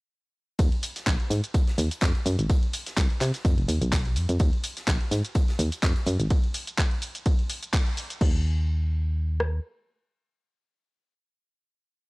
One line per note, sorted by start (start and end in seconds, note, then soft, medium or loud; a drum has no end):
0.59 0.70 D#2 loud
0.59 kick loud
0.59 closed hi-hat medium
0.59 ride medium
0.59 shaker soft
0.72 closed hi-hat soft
0.83 closed hi-hat medium
0.83 open hi-hat loud
0.83 shaker medium
0.96 snare soft
0.96 closed hi-hat medium
0.96 shaker soft
1.07 1.18 A#1 medium
1.07 kick loud
1.07 snare loud
1.07 clap loud
1.07 closed hi-hat medium
1.07 ride medium
1.07 shaker soft
1.20 closed hi-hat soft
1.30 1.41 G#2 medium
1.30 closed hi-hat medium
1.30 open hi-hat medium
1.30 shaker medium
1.44 closed hi-hat medium
1.44 shaker soft
1.54 kick loud
1.54 closed hi-hat medium
1.54 ride medium
1.54 shaker soft
1.67 snare medium
1.67 closed hi-hat soft
1.78 1.89 D#2 loud
1.78 closed hi-hat medium
1.78 open hi-hat loud
1.78 shaker medium
1.91 closed hi-hat soft
1.91 closed hi-hat medium
1.91 shaker soft
2.01 2.13 F2 loud
2.01 kick loud
2.01 snare loud
2.01 clap loud
2.01 closed hi-hat medium
2.01 ride medium
2.01 shaker soft
2.15 closed hi-hat soft
2.26 2.37 F#2 loud
2.26 closed hi-hat medium
2.26 open hi-hat medium
2.26 shaker medium
2.39 2.48 G#1 loud
2.39 closed hi-hat medium
2.39 shaker soft
2.50 kick loud
2.50 closed hi-hat medium
2.50 ride medium
2.50 shaker soft
2.63 closed hi-hat soft
2.73 closed hi-hat medium
2.73 open hi-hat loud
2.73 shaker medium
2.86 snare medium
2.86 closed hi-hat medium
2.86 shaker soft
2.97 3.08 C2 medium
2.97 kick loud
2.97 snare loud
2.97 clap loud
2.97 closed hi-hat medium
2.97 ride medium
2.97 shaker soft
3.10 closed hi-hat soft
3.21 3.32 C3 medium
3.21 snare medium
3.21 clap medium
3.21 closed hi-hat medium
3.21 open hi-hat loud
3.21 shaker medium
3.34 snare soft
3.34 closed hi-hat medium
3.34 shaker soft
3.45 3.56 F2 medium
3.45 kick loud
3.45 closed hi-hat medium
3.45 ride medium
3.45 shaker soft
3.58 3.67 F1 medium
3.58 closed hi-hat soft
3.68 3.79 D#2 medium
3.68 closed hi-hat medium
3.68 open hi-hat loud
3.68 shaker medium
3.82 4.18 B1 loud
3.82 closed hi-hat medium
3.82 shaker soft
3.92 kick loud
3.92 snare loud
3.92 clap loud
3.92 closed hi-hat medium
3.92 ride medium
3.92 shaker soft
4.05 closed hi-hat soft
4.16 4.27 F2 medium
4.16 closed hi-hat medium
4.16 open hi-hat loud
4.16 shaker medium
4.29 4.38 F2 medium
4.29 closed hi-hat soft
4.29 closed hi-hat medium
4.29 shaker soft
4.39 4.51 D#2 loud
4.39 kick loud
4.39 closed hi-hat medium
4.39 ride medium
4.39 shaker soft
4.53 closed hi-hat soft
4.64 closed hi-hat medium
4.64 open hi-hat loud
4.64 shaker medium
4.77 snare soft
4.77 closed hi-hat medium
4.77 shaker soft
4.88 4.98 A#1 medium
4.88 kick loud
4.88 snare loud
4.88 clap loud
4.88 closed hi-hat medium
4.88 ride medium
4.88 shaker soft
5.01 closed hi-hat soft
5.11 5.22 G#2 medium
5.11 snare medium
5.11 closed hi-hat medium
5.11 open hi-hat loud
5.11 shaker medium
5.25 closed hi-hat medium
5.25 shaker soft
5.35 kick loud
5.35 closed hi-hat medium
5.35 ride medium
5.35 shaker soft
5.48 snare medium
5.48 closed hi-hat soft
5.59 5.70 D#2 loud
5.59 closed hi-hat medium
5.59 open hi-hat loud
5.59 shaker medium
5.72 closed hi-hat soft
5.72 closed hi-hat medium
5.72 shaker soft
5.83 5.94 F2 loud
5.83 kick loud
5.83 snare loud
5.83 clap loud
5.83 closed hi-hat medium
5.83 ride medium
5.83 shaker soft
5.96 closed hi-hat soft
6.06 6.17 F#2 loud
6.06 closed hi-hat medium
6.06 open hi-hat loud
6.06 shaker medium
6.20 6.29 G#1 loud
6.20 closed hi-hat medium
6.20 shaker soft
6.30 kick loud
6.30 closed hi-hat medium
6.30 ride medium
6.30 shaker soft
6.43 closed hi-hat soft
6.54 open hi-hat loud
6.54 shaker medium
6.67 closed hi-hat medium
6.67 shaker soft
6.78 kick loud
6.78 clap loud
6.78 closed hi-hat medium
6.78 ride medium
6.78 shaker soft
6.91 closed hi-hat soft
7.02 open hi-hat loud
7.02 shaker medium
7.15 closed hi-hat medium
7.15 shaker soft
7.26 kick loud
7.26 closed hi-hat medium
7.26 ride medium
7.26 shaker soft
7.39 closed hi-hat soft
7.50 open hi-hat loud
7.50 shaker medium
7.63 closed hi-hat medium
7.63 shaker soft
7.73 kick loud
7.73 clap loud
7.73 closed hi-hat medium
7.73 ride medium
7.73 shaker soft
7.86 closed hi-hat soft
7.97 open hi-hat loud
7.97 shaker medium
8.10 closed hi-hat medium
8.10 shaker soft
8.21 9.60 D#2 loud
8.21 kick loud
8.21 crash medium
9.40 cross-stick medium